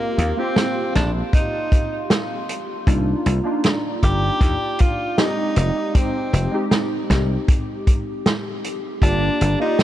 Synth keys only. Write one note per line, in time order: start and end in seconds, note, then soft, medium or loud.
0.00 0.33 A#3 medium
0.00 0.33 C4 medium
0.00 0.34 F4 medium
0.00 0.34 G4 medium
0.37 2.82 A#3 medium
0.37 2.83 C4 medium
0.37 2.83 F4 medium
0.37 2.84 G4 loud
2.87 3.41 A#3 medium
2.87 3.41 D4 medium
2.87 3.41 D#4 medium
2.87 3.41 F4 loud
3.44 5.13 A#3 medium
3.44 5.13 D4 medium
3.44 5.14 D#4 medium
3.44 5.14 F4 loud
5.17 5.90 G#3 medium
5.17 5.90 C4 medium
5.17 5.91 D#4 medium
5.17 5.91 G4 loud
5.94 6.48 G#3 medium
5.94 6.48 C4 medium
5.94 6.49 D#4 medium
5.94 6.49 G4 medium
6.51 8.97 G#3 medium
6.51 8.98 C4 medium
6.51 8.99 D#4 medium
6.51 8.99 G4 loud
9.02 9.56 A#3 medium
9.02 9.56 D4 medium
9.02 9.57 F4 medium
9.02 9.57 G4 loud
9.60 9.83 A#3 loud
9.60 9.83 F4 medium
9.60 9.83 G4 loud
9.60 9.83 D5 medium